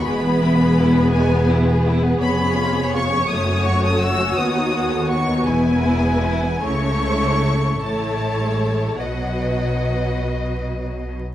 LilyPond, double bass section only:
\new Staff \with { instrumentName = "Double bass section" } { \clef bass \time 6/8 \key e \major \tempo 4. = 54 e,,2. | eis,,4. fis,,4. | dis,4. e,,4. | cis,4. a,,4. |
b,,2~ b,,8. r16 | }